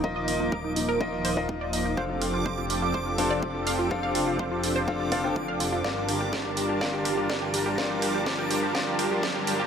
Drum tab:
HH |-o-o-o-o|-o-o-o-o|-o-o-o-o|-o-o-o-o|
SD |--------|--------|--------|o-o-o-o-|
BD |o-o-o-o-|o-o-o-o-|o-o-o-o-|o-o-o-o-|

HH |-o-o-o-o|
SD |o-o-o-o-|
BD |o-o-o-o-|